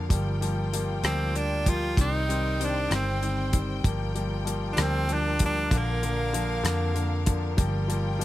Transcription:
0.00 0.12 F2 medium
0.00 1.93 A#4 medium
0.09 1.00 G1 medium
0.09 0.36 F3 medium
0.09 0.36 G3 medium
0.09 0.36 A#3 medium
0.09 1.96 F4 medium
0.09 5.66 G5 medium
0.09 kick medium
0.09 closed hi-hat medium
0.41 0.67 F3 medium
0.41 0.67 G3 medium
0.41 0.67 A#3 medium
0.41 closed hi-hat soft
0.73 0.99 F3 medium
0.73 0.99 G3 medium
0.73 0.99 A#3 medium
0.73 closed hi-hat medium
1.03 1.93 D2 medium
1.03 1.30 F3 medium
1.03 1.30 G3 medium
1.03 1.30 A#3 medium
1.03 1.38 C4 medium
1.03 cross-stick medium
1.03 closed hi-hat medium
1.35 1.61 G3 medium
1.35 1.62 A#3 medium
1.35 1.70 D4 medium
1.35 closed hi-hat soft
1.66 1.92 F3 medium
1.66 1.92 G3 medium
1.66 1.93 A#3 medium
1.66 1.99 F4 medium
1.66 kick medium
1.66 closed hi-hat medium
1.96 2.87 C2 medium
1.96 3.82 D#3 medium
1.96 2.23 D#3 medium
1.96 2.23 G3 medium
1.96 2.23 C4 medium
1.96 3.82 C5 medium
1.96 kick medium
1.96 closed hi-hat medium
2.01 2.66 D#4 medium
2.29 2.55 D#3 medium
2.29 2.55 G3 medium
2.29 2.55 C4 medium
2.29 closed hi-hat soft
2.60 2.86 D#3 medium
2.60 2.86 G3 medium
2.60 2.86 C4 medium
2.60 closed hi-hat medium
2.64 2.93 D4 medium
2.90 3.80 G1 medium
2.90 3.16 D#3 medium
2.90 3.16 G3 medium
2.90 3.16 C4 medium
2.90 cross-stick medium
2.90 closed hi-hat medium
2.95 3.59 C4 medium
3.21 3.48 D#3 medium
3.21 3.48 G3 medium
3.21 3.48 C4 medium
3.21 closed hi-hat soft
3.52 3.79 D#3 medium
3.52 3.79 G3 medium
3.52 3.79 C4 medium
3.52 kick medium
3.52 closed hi-hat medium
3.83 4.74 G1 medium
3.83 4.10 F3 medium
3.83 4.10 G3 medium
3.83 4.10 A#3 medium
3.83 5.68 F4 medium
3.83 8.25 A#4 medium
3.83 kick medium
3.83 closed hi-hat medium
4.15 4.41 F3 medium
4.15 4.41 G3 medium
4.15 4.41 A#3 medium
4.15 closed hi-hat soft
4.44 4.71 F3 medium
4.44 4.72 G3 medium
4.44 4.72 A#3 medium
4.44 closed hi-hat medium
4.73 5.03 F3 medium
4.73 5.03 G3 medium
4.73 4.83 D4 medium
4.77 5.67 D2 medium
4.77 5.03 A#3 medium
4.77 cross-stick medium
4.77 closed hi-hat medium
4.81 5.15 C4 medium
5.08 5.35 F3 medium
5.08 5.35 G3 medium
5.08 5.35 A#3 medium
5.08 closed hi-hat soft
5.13 5.42 D4 medium
5.39 5.66 F3 medium
5.39 5.66 G3 medium
5.39 5.66 A#3 medium
5.39 kick medium
5.39 closed hi-hat medium
5.46 5.79 D4 medium
5.71 6.60 A#1 medium
5.71 5.97 D3 medium
5.71 5.97 F3 medium
5.71 5.97 A#3 medium
5.71 7.56 D4 medium
5.71 7.56 F5 medium
5.71 kick medium
5.71 closed hi-hat medium
5.78 7.30 A#3 medium
6.02 6.28 D3 medium
6.02 6.28 F3 medium
6.02 6.29 A#3 medium
6.02 closed hi-hat soft
6.33 6.59 D3 medium
6.33 6.59 F3 medium
6.33 6.59 A#3 medium
6.33 closed hi-hat medium
6.63 7.60 F2 medium
6.63 6.90 D3 medium
6.63 6.90 F3 medium
6.63 6.90 A#3 medium
6.63 cross-stick medium
6.63 closed hi-hat medium
6.94 7.21 D3 medium
6.94 7.21 F3 medium
6.94 7.21 A#3 medium
6.94 closed hi-hat soft
7.26 7.52 D3 medium
7.26 7.52 F3 medium
7.26 7.52 A#3 medium
7.26 kick medium
7.26 closed hi-hat medium
7.57 8.25 G1 medium
7.57 7.83 F3 medium
7.57 7.83 G3 medium
7.57 7.84 A#3 medium
7.57 8.25 F4 medium
7.57 8.25 G5 medium
7.57 kick loud
7.57 closed hi-hat medium
7.88 8.14 F3 medium
7.88 8.15 G3 medium
7.88 8.15 A#3 medium
7.88 closed hi-hat soft
8.19 8.25 F3 medium
8.19 8.25 G3 medium
8.19 8.25 A#3 medium
8.19 closed hi-hat medium

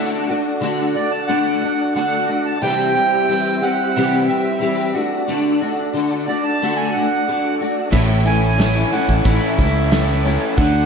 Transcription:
0.00 0.28 D3 medium
0.00 0.28 A3 medium
0.00 0.28 D4 medium
0.00 0.27 F#4 medium
0.00 2.59 F#4 medium
0.00 2.58 A4 medium
0.00 2.58 D5 medium
0.00 2.59 F#5 medium
0.28 0.60 A3 medium
0.28 0.62 D4 medium
0.28 0.62 F#4 medium
0.60 0.94 D3 medium
0.60 0.95 A3 medium
0.60 0.95 D4 medium
0.60 0.93 F#4 medium
0.95 1.27 A3 medium
0.95 1.28 D4 soft
0.95 1.28 F#4 medium
0.95 1.12 D5 loud
1.11 1.29 A5 medium
1.27 1.61 D3 medium
1.27 1.62 A3 medium
1.27 1.62 D4 medium
1.27 1.60 F#4 medium
1.27 1.94 F#5 loud
1.61 1.95 A3 soft
1.61 1.95 D4 medium
1.61 1.95 F#4 medium
1.95 2.28 D3 medium
1.95 2.28 A3 medium
1.95 2.28 D4 medium
1.95 2.25 F#4 medium
1.95 2.46 F#5 medium
2.27 2.61 A3 soft
2.27 2.62 D4 medium
2.27 2.61 F#4 medium
2.46 2.61 A5 medium
2.61 2.95 C3 medium
2.61 2.95 E3 medium
2.61 2.95 G3 medium
2.61 2.95 C4 medium
2.61 4.91 E4 medium
2.61 4.92 G4 medium
2.61 2.93 G4 medium
2.61 4.92 C5 medium
2.61 4.92 E5 medium
2.61 3.65 G5 loud
2.95 3.28 G3 medium
2.95 3.29 C4 medium
2.95 3.28 G4 medium
3.28 3.61 E3 medium
3.28 3.62 G3 medium
3.28 3.61 C4 medium
3.28 3.60 G4 medium
3.61 3.95 G3 medium
3.61 3.95 C4 medium
3.61 3.94 G4 medium
3.61 4.24 F#5 loud
3.96 4.28 C3 medium
3.96 4.29 E3 medium
3.96 4.28 G3 medium
3.96 4.27 C4 medium
3.96 4.26 G4 loud
4.27 4.59 G3 soft
4.27 4.60 C4 soft
4.27 4.60 G4 medium
4.27 4.90 E5 medium
4.59 4.93 E3 medium
4.59 4.94 G3 medium
4.59 4.94 C4 medium
4.59 4.94 G4 medium
4.93 5.27 A3 medium
4.93 7.89 D4 medium
4.93 5.28 D4 medium
4.93 7.89 F#4 medium
4.93 5.27 F#4 medium
4.93 7.89 A4 medium
4.93 7.89 D5 medium
5.28 5.61 D3 medium
5.28 5.61 A3 medium
5.28 5.61 D4 medium
5.28 5.60 F#4 medium
5.61 5.94 A3 medium
5.61 5.94 D4 medium
5.61 5.94 F#4 medium
5.93 6.27 D3 medium
5.93 6.27 A3 medium
5.93 6.27 D4 medium
5.93 6.25 F#4 medium
6.26 6.61 A3 soft
6.26 6.60 D4 soft
6.26 6.60 F#4 soft
6.26 6.44 D5 medium
6.44 6.77 A5 loud
6.62 6.94 D3 medium
6.62 6.94 A3 medium
6.62 6.95 D4 medium
6.62 6.94 F#4 loud
6.76 6.93 G#5 loud
6.93 7.27 D4 medium
6.93 7.27 F#4 medium
6.93 7.55 F#5 loud
6.97 7.27 A3 soft
7.28 7.60 D3 medium
7.28 7.60 A3 medium
7.28 7.61 D4 medium
7.28 7.59 F#4 medium
7.61 7.92 A3 soft
7.61 7.93 D4 medium
7.61 7.93 F#4 medium
7.91 8.83 A1 loud
7.91 8.25 A2 medium
7.91 8.26 E3 medium
7.91 8.26 A3 medium
7.91 10.55 C#4 medium
7.91 8.26 C#4 medium
7.91 10.54 E4 medium
7.91 8.24 E4 medium
7.91 10.54 A4 medium
7.91 10.54 C#5 medium
7.91 8.07 E5 loud
7.91 kick loud
7.91 crash loud
7.91 shaker medium
8.25 8.59 A3 medium
8.25 8.59 C#4 medium
8.25 8.58 E4 medium
8.25 8.94 G#5 loud
8.25 open hi-hat medium
8.25 shaker loud
8.43 shaker soft
8.59 8.92 E3 medium
8.59 8.93 A3 medium
8.59 8.92 C#4 medium
8.59 8.91 E4 medium
8.59 snare loud
8.59 open hi-hat medium
8.59 shaker medium
8.92 9.24 A3 soft
8.92 9.23 C#4 soft
8.92 9.24 E4 medium
8.92 9.26 F#5 medium
8.92 open hi-hat medium
8.92 shaker loud
9.08 9.21 A1 loud
9.08 kick medium
9.24 9.38 A1 loud
9.24 9.58 A2 medium
9.24 9.58 E3 medium
9.24 9.58 A3 medium
9.24 9.58 C#4 medium
9.24 9.58 E4 medium
9.24 10.20 E5 medium
9.24 kick medium
9.24 open hi-hat medium
9.24 shaker medium
9.58 10.36 C#2 medium
9.58 9.91 A3 soft
9.58 9.92 C#4 soft
9.58 9.91 E4 medium
9.58 kick medium
9.58 open hi-hat medium
9.58 shaker loud
9.75 shaker soft
9.91 10.24 E3 medium
9.91 10.25 A3 medium
9.91 10.25 C#4 medium
9.91 10.23 E4 medium
9.91 snare loud
9.91 open hi-hat loud
9.91 shaker medium
10.25 10.56 A3 medium
10.25 10.58 C#4 medium
10.25 10.58 E4 medium
10.25 open hi-hat medium
10.25 shaker loud
10.56 10.86 D2 loud
10.56 10.86 D3 medium
10.56 10.86 A3 medium
10.56 10.86 D4 medium
10.56 10.86 F#4 medium
10.56 10.86 A4 medium
10.56 10.86 D5 medium
10.56 10.86 F#5 loud
10.56 kick loud
10.56 open hi-hat medium
10.56 shaker medium

